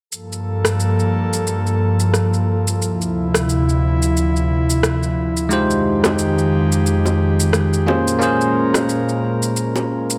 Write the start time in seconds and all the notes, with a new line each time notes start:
0.11 G2 F3 A#3 A4, shaker
0.32 shaker
0.65 cross-stick, shaker
0.80 shaker
1.00 shaker
1.33 shaker
1.47 shaker
1.67 shaker
2.00 shaker
2.14 cross-stick, shaker
2.34 shaker
2.67 shaker
2.82 D2 C3 E4, shaker
3.02 shaker
3.35 cross-stick, shaker
3.49 shaker
3.69 shaker
4.02 shaker
4.17 shaker
4.36 shaker
4.70 shaker
4.83 cross-stick, shaker
5.03 shaker
5.37 shaker
5.49 F2 D#3 G#3 D#4 F4 G4 C5, shaker
5.71 shaker
6.04 cross-stick, high bongo, shaker
6.19 shaker
6.39 shaker
6.72 shaker
6.86 shaker
7.06 high bongo, shaker
7.40 shaker
7.53 cross-stick, shaker
7.73 shaker
7.87 A#2 A#3 C#4 F4 G#4 A#4 C5, high bongo
8.08 shaker
8.19 A#3 C#4 F4 G#4, shaker
8.23 C5
8.41 shaker
8.74 cross-stick, high bongo, shaker
8.89 shaker
9.09 shaker
9.42 shaker
9.57 shaker
9.76 high bongo, shaker
10.10 shaker